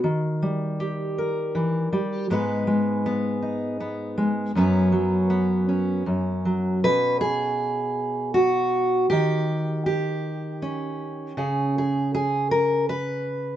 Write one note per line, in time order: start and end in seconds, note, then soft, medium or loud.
0.04 2.25 D#3 medium
0.42 1.91 G3 medium
0.80 2.26 G4 medium
1.18 2.26 A#4 medium
1.55 1.92 E3 medium
1.93 2.30 G3 medium
2.30 4.51 G#2 medium
2.30 2.66 G#3 medium
2.30 3.05 B3 medium
2.30 3.41 D#4 medium
2.30 4.52 B4 medium
2.67 4.16 G#3 medium
3.06 3.79 B3 medium
3.42 4.51 D#4 soft
3.80 4.51 B3 medium
4.18 4.51 G#3 medium
4.55 6.05 F#2 medium
4.55 4.91 F#3 medium
4.55 5.29 B3 medium
4.55 5.68 C#4 medium
4.55 6.04 B4 medium
4.92 6.02 F#3 medium
5.30 6.02 B3 medium
5.69 8.35 C#4 soft
6.06 6.83 F#2 medium
6.45 6.79 F#3 medium
6.84 9.11 B2 medium
6.84 7.20 B4 loud
7.21 8.34 G#4 medium
8.34 9.09 F#4 medium
9.10 11.32 D#3 medium
9.10 9.85 G4 loud
9.86 11.37 G4 medium
10.62 12.92 C#4 medium
11.37 13.56 C#3 medium
11.37 11.75 G#4 soft
11.78 12.13 G#4 medium
12.15 12.51 G#4 medium
12.51 12.88 A#4 medium
12.89 13.56 B4 medium